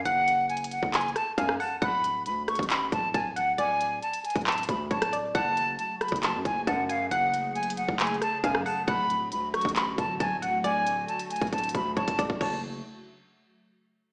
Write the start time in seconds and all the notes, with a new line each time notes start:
0.05 F#1 F#5, closed hi-hat
0.28 closed hi-hat
0.49 G#5, closed hi-hat
0.57 closed hi-hat
0.64 closed hi-hat
0.71 F#5, closed hi-hat
0.83 F#1, kick
0.94 G#5, clap, closed hi-hat
1.01 closed hi-hat
1.08 closed hi-hat
1.16 A5, cross-stick, closed hi-hat
1.38 F#2 F5 G#5, kick, closed hi-hat
1.49 cross-stick
1.60 F#5 A5, open hi-hat
1.82 D1 F#5 B5, kick, closed hi-hat
2.04 closed hi-hat
2.26 D2 B5, closed hi-hat
2.48 C#6, cross-stick, closed hi-hat
2.55 A1, kick, closed hi-hat
2.63 closed hi-hat
2.70 B5, clap, closed hi-hat
2.92 D1 A5, kick, closed hi-hat
3.14 D1 G#5 A5, kick, closed hi-hat
3.36 F#5, closed hi-hat
3.58 D1 D5 G#5, closed hi-hat
3.81 closed hi-hat
4.02 A5, closed hi-hat
4.13 closed hi-hat
4.25 G#5, closed hi-hat
4.30 closed hi-hat
4.36 D1, kick, closed hi-hat
4.41 closed hi-hat
4.47 A5, clap, closed hi-hat
4.52 closed hi-hat
4.58 closed hi-hat
4.63 closed hi-hat
4.69 D2 B5, kick, closed hi-hat
4.91 D1 C#5 A5, kick, closed hi-hat
5.02 cross-stick, closed hi-hat
5.13 D5, closed hi-hat
5.35 F#1 C#3 F#3 A3 F#4 F#5 A5, kick, closed hi-hat
5.57 closed hi-hat
5.79 A5, closed hi-hat
6.01 B5, cross-stick, closed hi-hat
6.08 F#1, kick, closed hi-hat
6.16 closed hi-hat
6.23 A5, clap, closed hi-hat
6.34 F#2
6.45 F#1 G#5, kick, closed hi-hat
6.67 F#2 F#5 A5, kick, closed hi-hat
6.89 F5 G#5, closed hi-hat
7.11 F#1 G#4 F#5, closed hi-hat
7.34 closed hi-hat
7.55 G#5, closed hi-hat
7.63 closed hi-hat
7.70 closed hi-hat
7.77 F#5, closed hi-hat
7.88 F#1, kick
8.00 G#5, clap, closed hi-hat
8.07 closed hi-hat
8.14 closed hi-hat
8.22 A5, cross-stick, closed hi-hat
8.44 F#2 F5 G#5, kick, closed hi-hat
8.55 cross-stick
8.66 F#5 A5, open hi-hat
8.88 D1 D3 F#4 F#5 B5, kick, closed hi-hat
9.10 closed hi-hat
9.32 D2 B5, closed hi-hat
9.54 C#6, cross-stick, closed hi-hat
9.61 A1, kick, closed hi-hat
9.69 closed hi-hat
9.76 B5, clap, closed hi-hat
9.98 D1 A5, kick, closed hi-hat
10.20 D1 G#5 A5, kick, closed hi-hat
10.42 F#5, closed hi-hat
10.64 D1 D5 G#5, closed hi-hat
10.87 closed hi-hat
11.08 A5, closed hi-hat
11.19 closed hi-hat
11.30 G#5, closed hi-hat
11.36 closed hi-hat
11.41 D1, kick, closed hi-hat
11.47 closed hi-hat
11.53 A5, kick, closed hi-hat
11.58 closed hi-hat
11.64 closed hi-hat
11.69 closed hi-hat
11.75 D2 B5, kick, closed hi-hat
11.97 D1 C#5 A5, kick, closed hi-hat
12.08 kick, closed hi-hat
12.19 D5, kick, closed hi-hat
12.30 kick
12.41 F#1 C#3 F#3 A3 F#4 C#5 A5, kick, crash